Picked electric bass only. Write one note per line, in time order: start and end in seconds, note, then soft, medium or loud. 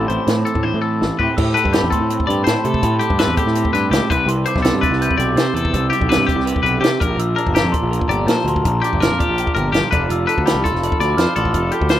0.10 0.17 A1 loud
0.27 0.43 A2 medium
0.55 0.71 A2 medium
0.74 1.03 A2 medium
1.02 1.09 A1 medium
1.20 1.27 A2 medium
1.38 1.53 A2 medium
1.65 1.80 G2 medium
1.83 1.91 E2 medium
2.00 2.16 A2 medium
2.29 2.44 G2 medium
2.47 2.55 A2 loud
2.65 2.81 C3 medium
2.83 2.98 A2 loud
3.10 3.26 G2 loud
3.28 3.36 E2 medium
3.46 3.62 A2 medium
3.74 3.89 G2 medium
3.91 3.99 C#2 loud
4.11 4.26 C2 medium
4.26 4.43 C2 medium
4.56 4.71 B1 medium
4.73 4.81 G2 medium
4.91 5.07 C2 medium
5.18 5.34 B1 medium
5.36 5.44 C3 loud
5.54 5.70 E2 medium
5.74 5.89 C2 loud
6.01 6.17 B1 medium
6.17 6.26 G2 medium
6.35 6.52 C2 medium
6.63 6.80 B1 medium
6.81 6.90 C3 loud
7.01 7.17 A#1 medium
7.17 7.34 A#1 medium
7.47 7.62 G1 medium
7.63 7.71 F2 medium
7.83 7.98 A#1 medium
8.08 8.25 G1 loud
8.27 8.35 A#2 loud
8.45 8.61 D2 medium
8.65 8.81 A#1 loud
8.93 9.08 G1 medium
9.11 9.18 F2 medium
9.29 9.44 A#1 medium
9.56 9.71 G1 medium
9.74 9.81 G1 loud
9.93 10.08 F1 medium
10.10 10.25 F1 loud
10.38 10.53 D2 medium
10.55 10.63 C2 medium
10.72 10.88 F1 medium
11.00 11.16 D2 medium
11.18 11.26 F2 loud
11.37 11.52 A1 medium
11.54 11.70 F1 loud
11.81 11.97 D2 medium